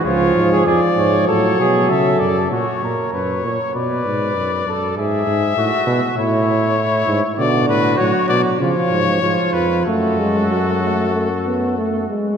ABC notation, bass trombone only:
X:1
M:4/4
L:1/8
Q:1/4=98
K:F#phr
V:1 name="Bass trombone" clef=bass
C,, ^G,, ^E,, G,, A,, B,, C, F,, | ^A,, A,, F,, A,, B,, ^G,, F,, F,, | ^G,, G,, A,, B,, A,,3 G,, | [K:F#m] B,, A,, A,, B,, C, G,, G,, ^E,, |
F,,6- F,, z |]